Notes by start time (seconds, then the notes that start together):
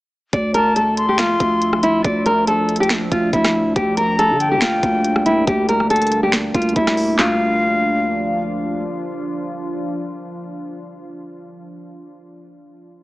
0.33 D2 F3 D4 D5 E5, kick, closed hi-hat
0.54 A#4 A5, closed hi-hat
0.76 A4, closed hi-hat
0.97 C6, closed hi-hat
1.09 G4
1.18 F4, finger snap, snare, closed hi-hat
1.40 D2, kick, closed hi-hat
1.62 closed hi-hat
1.73 cross-stick
1.83 E4, closed hi-hat
2.04 D2 D5, kick, closed hi-hat
2.26 A#4, closed hi-hat
2.47 A4, closed hi-hat
2.69 closed hi-hat
2.76 closed hi-hat
2.80 G4, closed hi-hat
2.89 finger snap, snare, closed hi-hat
3.11 D2 F4, kick, closed hi-hat
3.33 D2 E4, kick, closed hi-hat
3.45 cross-stick, snare
3.76 D2 G3 A#3 G4, kick, closed hi-hat
3.97 A#4 A#5, closed hi-hat
4.19 A4, closed hi-hat
4.30 D3
4.40 G5, closed hi-hat
4.51 G4
4.57 D2
4.61 F4, finger snap, snare, closed hi-hat
4.83 D2, kick, closed hi-hat
5.04 closed hi-hat
5.16 cross-stick
5.26 E4, closed hi-hat
5.47 D2 G4, kick, closed hi-hat
5.69 A#4, closed hi-hat
5.80 cross-stick
5.90 A4, closed hi-hat
5.96 closed hi-hat
6.02 closed hi-hat
6.07 closed hi-hat
6.12 closed hi-hat
6.23 G4
6.32 finger snap, snare, closed hi-hat
6.54 D2 F4, kick, closed hi-hat
6.62 closed hi-hat
6.69 closed hi-hat
6.76 D2 E4, kick, closed hi-hat
6.87 cross-stick, snare
6.97 open hi-hat
7.19 D2 F3 D4 F4 F5, snare, clap